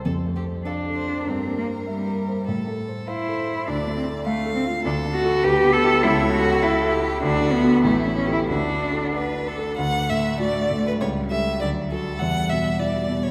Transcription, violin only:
X:1
M:2/4
L:1/16
Q:1/4=100
K:F
V:1 name="Violin"
A2 G2 A2 c2 | B8 | A4 c4 | d4 f4 |
[K:D] A4 B4 | c4 A2 G2 | F4 E4 | F4 B2 A2 |
f2 e2 d3 B | c2 e2 d2 A2 | f2 e2 d3 c |]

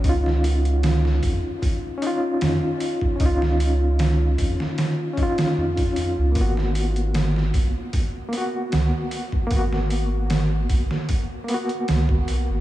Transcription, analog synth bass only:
X:1
M:4/4
L:1/16
Q:"Swing 16ths" 1/4=76
K:G#dor
V:1 name="Analog synth bass" clef=bass
C,,6 E,, z4 z E,, z3 | C,,6 E,, z4 z E,,2 E,, C,, | G,,,6 B,,, z4 z C,, z3 | G,,,6 B,,, z4 z C,,2 B,,, G,,, |]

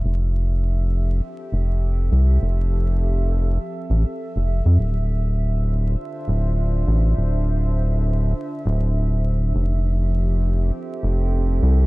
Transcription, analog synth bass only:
X:1
M:4/4
L:1/16
Q:"Swing 16ths" 1/4=101
K:F
V:1 name="Analog synth bass" clef=bass
F,,,8 z2 F,,,4 C,,2 | F,,,8 z2 A,,, z2 F,,,2 F,, | D,,,8 z2 D,,,4 A,,,2 | D,,,8 z2 D,,,6 |
F,,,8 z2 F,,,4 C,,2 |]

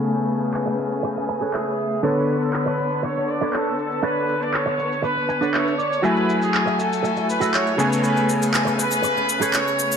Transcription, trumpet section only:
X:1
M:4/4
L:1/16
Q:1/4=120
K:Bdor
V:1 name="Trumpet section"
z12 G4 | B3 A B4 c2 d2 A4 | B3 d c4 B4 c4 | B3 G3 A4 B2 c4 |
B2 z4 B6 c4 |]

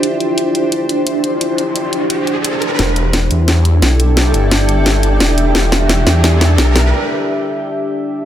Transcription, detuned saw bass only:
X:1
M:4/4
L:1/8
Q:1/4=174
K:Ephr
V:1 name="Detuned saw bass" clef=bass
z8 | z8 | E,,,3 E,,3 B,,,2- | B,,, G,,,4- G,,, E,,,2 |
E,,,3 E,,3 B,,,2 | z8 |]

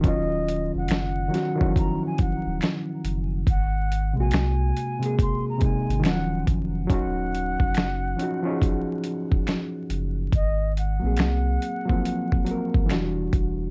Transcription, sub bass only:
X:1
M:4/4
L:1/16
Q:"Swing 16ths" 1/4=70
K:Ebdor
V:1 name="Sub bass" clef=bass
E,,,3 F,,, G,,,2 z4 z E,,, z2 G,,,2 | A,,,3 B,,, C,,2 z4 z A,,, E,,,2 F,,,2 | E,,,3 F,,, G,,,2 z4 z E,,, z2 G,,,2 | A,,,3 B,,, C,,2 z4 z A,,, =E,,,2 E,,,2 |]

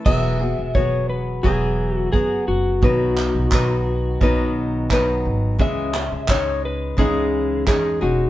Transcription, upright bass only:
X:1
M:4/4
L:1/16
Q:1/4=87
K:E
V:1 name="Upright bass" clef=bass
E,,,3 E,,, E,,,4 E,,,4 F,,,2 F,,,2 | B,,,3 B,,, B,,,4 B,,,6 G,,,2 | C,,3 C,, C,,4 C,,4 E,,2 E,,,2 |]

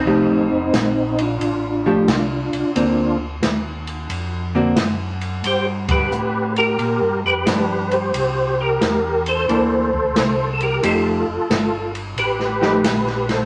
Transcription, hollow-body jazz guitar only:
X:1
M:4/4
L:1/8
Q:"Swing" 1/4=89
K:Fmix
V:1 name="Hollow-body jazz guitar"
[F,A,EG] z4 [F,A,G] z2 | [D,^A,C] z4 [D,A,C^F] z2 | z6 [F,D]2 | z4 [=E,B,D] z3 |
[F,A,EG] z4 [F,A,EG] z2 |]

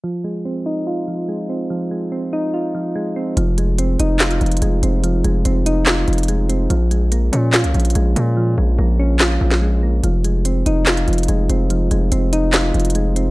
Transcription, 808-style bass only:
X:1
M:4/4
L:1/16
Q:1/4=144
K:Fm
V:1 name="808-style bass" clef=bass
z16 | z16 | F,,,6 F,,,4 F,,,2 F,,,2 F,,,2- | F,,,2 F,,,2 F,,,6 F,,,6 |
B,,,6 B,,3 C,, B,,,2 B,,,2 B,,2- | B,,2 B,,,2 B,,,6 B,,,6 | F,,,6 F,,,4 F,,,2 F,,,2 F,,,2- | F,,,2 F,,,2 F,,,6 F,,,6 |]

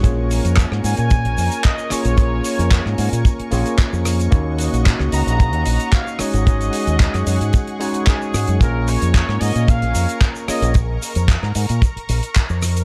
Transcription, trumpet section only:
X:1
M:4/4
L:1/16
Q:1/4=112
K:Bbm
V:1 name="Trumpet section"
z6 a a4- a e2 d2- | d8- d2 z6 | z6 b b4- b f2 e2- | e8- e2 z2 A4 |
B2 d4 e2 f4 z2 e2 | z16 |]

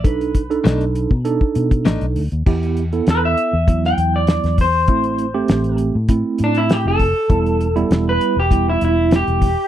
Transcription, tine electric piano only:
X:1
M:4/4
L:1/16
Q:1/4=99
K:Em
V:1 name="Tine electric piano"
[D^DA]2 z [=D^DA]4 z [=D^DA]6 z2 | [B,EG]2 z [B,EA]4 z [F,B,E]6 z2 | [A,CE]2 z [A,CG]4 z [A,CE]6 z2 | [G,B,E]2 z [G,B,E]4 z [G,B,E]6 z2 |]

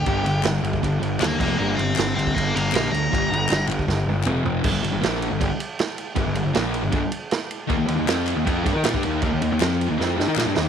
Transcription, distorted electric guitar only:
X:1
M:4/4
L:1/16
Q:1/4=157
K:Gm
V:1 name="Distorted electric guitar" clef=bass
[G,,D,G,]2 [G,,D,]2 [G,,D,]2 [G,,D,]2 [G,,D,]2 [G,,D,]2 [G,,D,G,]2 [F,,C,F,]2 | [G,,D,G,]2 [G,,D,]2 [G,,D,]2 [G,,D,]2 [G,,D,]2 [G,,D,]2 [G,,D,G,]2 [G,,D,]2 | [G,,D,G,]2 [G,,D,]2 [G,,D,]2 [G,,D,]2 [G,,D,]2 [G,,D,]2 [F,,C,F,]2 [F,,C,F,]2 | [G,,D,] [G,,D,] [G,,D,] [G,,D,] [B,,F,B,]3 [G,,D,] [G,,D,] z6 z |
[G,,D,] [G,,D,] [G,,D,] [G,,D,] [B,,F,B,]3 [G,,D,] [G,,D,] z6 z | [E,B,] [E,B,] [E,B,] [E,B,] [F,CF]3 [E,B,] [F,CF]2 [G,D] [EB] [B,F] [G,D] [E,B,E]2 | [E,B,] [E,B,] [E,B,] [E,B,] [F,CF]3 [E,B,] [F,CF]2 [G,D] [EB] [B,F] [G,D] [E,B,E]2 |]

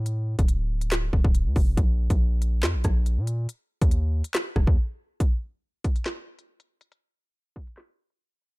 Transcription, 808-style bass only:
X:1
M:4/4
L:1/16
Q:1/4=140
K:Bb
V:1 name="808-style bass" clef=bass
A,,3 D,,,6- D,,, D,,, D,,,2 D,, F,,,2 | B,,,3 B,,,4- B,,, F,, B,,, B,,,3 B,,3 | z3 E,,4 z3 E,,, E,, z4 | z16 |
z16 |]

